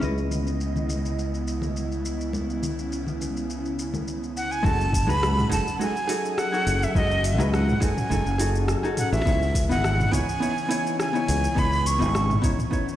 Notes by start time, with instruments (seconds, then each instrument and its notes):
0.00 fingered electric bass C#2, analog synth pad C#3 B3 E4 D#5, hollow-body jazz guitar C#4 E4 B4, high conga, shaker
0.04 hollow-body jazz guitar D#5
0.18 shaker
0.31 low conga, shaker
0.47 shaker
0.61 shaker
0.76 low conga, shaker
0.89 high conga, shaker
1.05 shaker
1.19 shaker
1.34 shaker
1.48 shaker
1.62 high conga, low conga, shaker
1.76 shaker
1.92 shaker
2.05 shaker
2.21 shaker
2.32 analog synth pad C#4, high conga, shaker
2.50 shaker
2.63 low conga, shaker
2.79 shaker
2.92 shaker
3.07 low conga, shaker
3.21 high conga, shaker
3.37 shaker
3.50 shaker
3.65 shaker
3.79 shaker
3.94 high conga, low conga, shaker
4.08 shaker
4.24 shaker
4.37 flute F#5, shaker
4.51 flute G#5, shaker
4.63 fingered electric bass F#1, analog synth pad F#3 C#4 F#5, hollow-body jazz guitar G#3 D#4 F#4 A4, flute A5, kick, shaker
4.81 shaker
4.93 kick, open hi-hat, shaker
5.07 fingered electric bass C#2, hollow-body jazz guitar G#3 D#4 F#4 B4, flute B5, shaker
5.23 cross-stick, shaker
5.38 cross-stick, mid tom, shaker
5.49 fingered electric bass F#1, hollow-body jazz guitar G#3 D#4 F#4 A4, flute A5, kick, open hi-hat, shaker
5.68 shaker
5.79 hollow-body jazz guitar G#3 D#4 F#4 A4, flute G#5, shaker
5.96 shaker
6.08 hollow-body jazz guitar D#4 F#4 G#4 A4, open hi-hat, shaker
6.25 shaker
6.38 flute F#5, cross-stick, shaker
6.52 hollow-body jazz guitar D#4 F#4 G#4 A4, shaker
6.67 fingered electric bass F#1, open hi-hat, shaker
6.83 flute E5, shaker
6.95 fingered electric bass F#1, hollow-body jazz guitar G#3 D#4 F#4 A4, flute D#5, kick, shaker
7.11 shaker
7.24 flute E5, open hi-hat, shaker
7.38 fingered electric bass C#2, hollow-body jazz guitar G#3 D#4 F#4 B4, shaker
7.54 flute F#5, cross-stick, shaker
7.68 mid tom, shaker
7.80 fingered electric bass F#1, hollow-body jazz guitar G#3 D#4 F#4 A4, flute G#5, kick, open hi-hat, shaker
7.97 mid tom, shaker
8.10 fingered electric bass F#1, hollow-body jazz guitar G#3 D#4 F#4 A4, kick, shaker
8.26 fingered electric bass F#1, shaker
8.38 hollow-body jazz guitar D#4 F#4 G#4 A4, open hi-hat, shaker
8.55 shaker
8.68 cross-stick, shaker
8.83 hollow-body jazz guitar D#4 F#4 G#4 A4, shaker
8.97 flute F#5, mid tom, open hi-hat, shaker
9.12 fingered electric bass A1, flute E5, shaker
9.25 fingered electric bass C#2, analog synth pad C#3 E3 B3, hollow-body jazz guitar B3 D#4 E4 C#5, kick, shaker
9.42 shaker
9.55 kick, open hi-hat, shaker
9.69 fingered electric bass G#1, hollow-body jazz guitar B3 D#4 E4 D#5, flute F#5, shaker
9.84 cross-stick, shaker
10.00 cross-stick, mid tom, shaker
10.11 fingered electric bass C#2, hollow-body jazz guitar B3 D#4 E4 C#5, flute G#5, kick, open hi-hat, shaker
10.29 shaker
10.40 hollow-body jazz guitar B3 D#4 E4 C#5, shaker
10.58 shaker
10.69 hollow-body jazz guitar B3 D#4 E4 C#5, open hi-hat, shaker
10.87 shaker
11.00 flute G#5, cross-stick, shaker
11.13 hollow-body jazz guitar B3 D#4 E4 C#5, shaker
11.28 fingered electric bass C#2, open hi-hat, shaker
11.44 shaker
11.55 fingered electric bass C#2, hollow-body jazz guitar B3 D#4 E4 C#5, analog synth pad C#4, flute B5, kick, shaker
11.73 shaker
11.86 flute C#6, open hi-hat, shaker
11.99 fingered electric bass G#1, hollow-body jazz guitar B3 D#4 E4 D#5, shaker
12.15 cross-stick, shaker
12.30 cross-stick, mid tom, shaker
12.42 fingered electric bass C#2, hollow-body jazz guitar B3 D#4 E4 C#5, kick, open hi-hat, shaker
12.59 mid tom, shaker
12.71 hollow-body jazz guitar B3 D#4 E4 C#5, kick, shaker
12.89 shaker